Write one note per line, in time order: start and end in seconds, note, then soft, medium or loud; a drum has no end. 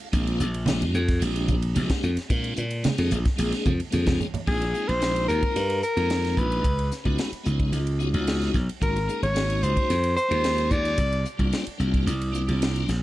0.12 0.39 A#1 loud
0.12 0.48 G#3 medium
0.12 0.48 A#3 medium
0.12 0.48 C4 medium
0.12 0.48 D4 medium
0.12 0.48 F4 medium
0.12 kick loud
0.12 hi-hat pedal medium
0.12 ride medium
0.12 muted conga soft
0.27 ride soft
0.40 0.83 A#1 medium
0.40 hi-hat pedal medium
0.40 muted conga soft
0.54 ride medium
0.66 1.02 G#3 medium
0.66 1.02 A#3 medium
0.66 1.02 C4 medium
0.66 1.02 D4 medium
0.66 1.02 G4 medium
0.66 snare loud
0.66 hi-hat pedal medium
0.66 ride medium
0.66 high conga medium
0.82 0.94 F2 medium
0.82 ride medium
0.93 1.20 F2 medium
0.93 hi-hat pedal medium
0.93 muted conga soft
1.08 kick medium
1.08 snare soft
1.08 ride medium
1.19 1.73 A#1 medium
1.19 1.56 G#3 medium
1.19 1.56 A#3 medium
1.19 1.56 C4 medium
1.19 1.56 D4 medium
1.19 1.57 G4 medium
1.19 hi-hat pedal medium
1.19 ride medium
1.19 muted conga soft
1.36 ride medium
1.48 kick medium
1.48 hi-hat pedal medium
1.48 high conga medium
1.62 ride medium
1.75 1.89 A#1 medium
1.75 2.10 G#3 medium
1.75 2.10 A#3 medium
1.75 2.11 C4 medium
1.75 2.11 D4 medium
1.75 2.11 G4 medium
1.75 hi-hat pedal medium
1.75 ride medium
1.75 high conga medium
1.90 kick medium
1.90 snare loud
1.90 ride medium
2.03 2.17 F2 medium
2.03 hi-hat pedal medium
2.17 muted slap bass stroke soft
2.17 snare soft
2.17 ride medium
2.29 2.56 A#2 medium
2.29 2.64 G#3 medium
2.29 2.65 A#3 medium
2.29 2.65 C4 medium
2.29 2.65 D4 medium
2.29 2.65 F4 medium
2.29 kick medium
2.29 hi-hat pedal medium
2.29 ride medium
2.29 muted conga soft
2.44 ride medium
2.57 2.83 A#2 medium
2.57 hi-hat pedal medium
2.57 muted conga soft
2.71 ride medium
2.83 3.18 G#3 medium
2.83 3.19 A#3 medium
2.83 3.19 C4 medium
2.83 3.19 D4 medium
2.83 3.19 G#4 medium
2.83 snare loud
2.83 hi-hat pedal medium
2.83 ride medium
2.83 high conga medium
2.98 3.11 F2 medium
2.98 ride medium
3.11 3.25 A#1 loud
3.11 hi-hat pedal medium
3.11 muted conga soft
3.11 low conga medium
3.25 kick medium
3.25 snare soft
3.25 ride medium
3.36 3.52 A#1 medium
3.36 3.72 G#3 medium
3.36 3.73 A#3 medium
3.36 3.73 C4 medium
3.36 3.73 D4 medium
3.36 3.73 G#4 medium
3.36 hi-hat pedal medium
3.36 ride medium
3.36 muted conga soft
3.52 snare soft
3.52 ride medium
3.66 3.79 F2 medium
3.66 kick medium
3.66 hi-hat pedal medium
3.66 high conga medium
3.80 ride medium
3.90 4.19 F2 medium
3.90 4.27 G#3 medium
3.90 4.27 A#3 medium
3.90 4.27 C4 medium
3.90 4.27 D4 medium
3.90 4.28 G#4 medium
3.90 hi-hat pedal medium
3.90 ride medium
3.90 high conga medium
4.07 kick medium
4.07 snare loud
4.07 ride medium
4.07 high conga medium
4.20 hi-hat pedal medium
4.20 low conga medium
4.34 ride medium
4.34 low conga medium
4.46 4.73 A#1 medium
4.46 4.64 G#3 medium
4.46 4.64 A#3 medium
4.46 4.65 C4 medium
4.46 4.65 D#4 medium
4.46 4.65 F4 medium
4.46 4.90 G#4 medium
4.46 kick medium
4.46 crash medium
4.62 ride medium
4.74 4.92 G#3 medium
4.74 4.92 A#3 medium
4.74 4.92 C4 medium
4.74 4.92 D#4 medium
4.74 4.93 F4 medium
4.74 hi-hat pedal medium
4.88 5.27 A#1 medium
4.88 5.28 C5 medium
4.88 ride soft
5.00 5.61 G#3 medium
5.00 5.62 A#3 medium
5.00 5.62 C4 medium
5.00 5.62 D#4 medium
5.00 5.62 F4 medium
5.00 snare medium
5.00 hi-hat pedal medium
5.00 ride medium
5.16 ride medium
5.28 5.42 D#2 medium
5.28 5.79 A#4 medium
5.28 hi-hat pedal medium
5.43 muted slap bass stroke soft
5.43 kick medium
5.43 ride medium
5.56 5.81 G2 medium
5.56 hi-hat pedal medium
5.56 ride medium
5.70 ride medium
5.83 6.40 A#4 medium
5.83 hi-hat pedal medium
5.96 6.35 F2 medium
5.96 6.64 G#3 medium
5.96 6.64 A#3 medium
5.96 6.64 C4 medium
5.96 6.65 D#4 medium
5.96 6.65 F4 medium
5.96 ride medium
6.10 snare loud
6.10 hi-hat pedal medium
6.10 ride medium
6.25 snare soft
6.25 ride soft
6.37 6.63 A#1 medium
6.37 6.92 B4 medium
6.37 kick medium
6.37 hi-hat pedal medium
6.52 ride soft
6.64 6.90 C#2 medium
6.64 kick medium
6.64 hi-hat pedal medium
6.64 ride medium
6.79 ride medium
6.92 snare soft
6.92 hi-hat pedal medium
7.04 7.18 C#2 medium
7.04 7.31 G#3 medium
7.04 7.31 B3 medium
7.04 7.31 C#4 medium
7.04 7.31 D#4 medium
7.04 7.31 F#4 medium
7.04 kick medium
7.04 ride soft
7.18 snare medium
7.18 hi-hat pedal medium
7.18 ride medium
7.32 muted slap bass stroke soft
7.32 ride soft
7.43 7.72 C#2 medium
7.43 7.79 G#3 medium
7.43 7.80 B3 medium
7.43 7.80 C#4 medium
7.43 7.80 D#4 medium
7.43 7.80 F4 medium
7.43 hi-hat pedal medium
7.60 kick medium
7.60 ride soft
7.72 8.12 C#2 medium
7.72 hi-hat pedal medium
7.72 ride medium
7.87 ride soft
7.99 8.09 G#3 medium
7.99 8.08 B3 medium
7.99 8.09 C#4 medium
7.99 8.09 D#4 medium
7.99 8.10 F#4 medium
7.99 hi-hat pedal medium
8.14 8.52 C#2 medium
8.14 8.57 G#3 medium
8.14 8.57 B3 medium
8.14 8.57 C#4 medium
8.14 8.57 D#4 medium
8.14 8.58 F#4 medium
8.14 ride medium
8.27 snare medium
8.27 hi-hat pedal medium
8.27 ride medium
8.42 snare soft
8.42 ride soft
8.54 8.68 B1 medium
8.54 kick medium
8.54 snare soft
8.54 hi-hat pedal medium
8.69 ride soft
8.80 9.07 G#1 medium
8.80 8.98 G#3 medium
8.80 8.99 A#3 medium
8.80 8.99 C#4 medium
8.80 8.99 D#4 medium
8.80 8.99 F#4 medium
8.80 9.20 A#4 medium
8.80 kick medium
8.80 hi-hat pedal medium
8.80 ride medium
8.96 ride soft
9.07 9.26 G#3 medium
9.07 9.26 A#3 medium
9.07 9.26 C#4 medium
9.07 9.26 D#4 medium
9.07 9.27 G#4 medium
9.07 hi-hat pedal medium
9.22 9.61 G#1 medium
9.22 9.64 C#5 medium
9.22 ride soft
9.33 9.95 G#3 medium
9.33 9.96 A#3 medium
9.33 9.96 C#4 medium
9.33 9.96 D#4 medium
9.33 9.96 F#4 medium
9.33 snare medium
9.33 hi-hat pedal medium
9.33 ride medium
9.50 ride medium
9.63 9.76 C#2 medium
9.63 10.16 C5 medium
9.63 hi-hat pedal medium
9.77 muted slap bass stroke soft
9.77 kick medium
9.77 ride medium
9.90 10.16 F2 medium
9.90 hi-hat pedal medium
9.90 ride medium
10.04 ride medium
10.16 10.73 C5 medium
10.16 hi-hat pedal medium
10.28 10.69 D#2 medium
10.28 10.97 G#3 medium
10.28 10.97 A#3 medium
10.28 10.98 C#4 medium
10.28 10.98 D#4 medium
10.28 10.98 F4 medium
10.28 ride medium
10.44 snare loud
10.44 hi-hat pedal medium
10.44 ride medium
10.58 ride soft
10.71 10.97 D#2 medium
10.71 11.26 D5 medium
10.71 kick medium
10.71 hi-hat pedal medium
10.85 ride medium
10.98 11.24 C2 medium
10.98 kick medium
10.98 hi-hat pedal medium
10.98 ride medium
11.13 ride soft
11.26 hi-hat pedal medium
11.37 11.52 C2 medium
11.37 11.65 G3 medium
11.37 11.65 A#3 medium
11.37 11.65 C4 medium
11.37 11.65 D4 medium
11.37 11.66 F4 medium
11.37 kick medium
11.37 ride medium
11.53 snare medium
11.53 hi-hat pedal medium
11.53 ride medium
11.67 muted slap bass stroke soft
11.67 ride medium
11.78 12.06 C2 medium
11.78 12.14 G3 medium
11.78 12.14 A#3 medium
11.78 12.14 C4 medium
11.78 12.15 D4 medium
11.78 12.15 F4 medium
11.78 hi-hat pedal medium
11.94 kick medium
11.94 ride soft
12.06 12.46 C2 medium
12.06 hi-hat pedal medium
12.06 ride medium
12.21 ride medium
12.32 12.42 G3 medium
12.32 12.42 A#3 medium
12.32 12.43 C4 medium
12.32 12.43 D4 medium
12.32 12.43 F4 medium
12.32 hi-hat pedal medium
12.47 12.87 C2 medium
12.47 12.91 G3 medium
12.47 12.91 A#3 medium
12.47 12.91 C4 medium
12.47 12.91 D4 medium
12.47 12.91 F4 medium
12.47 ride soft
12.62 snare medium
12.62 hi-hat pedal medium
12.62 ride medium
12.76 ride soft
12.88 13.02 A#1 medium
12.88 snare soft
12.88 hi-hat pedal medium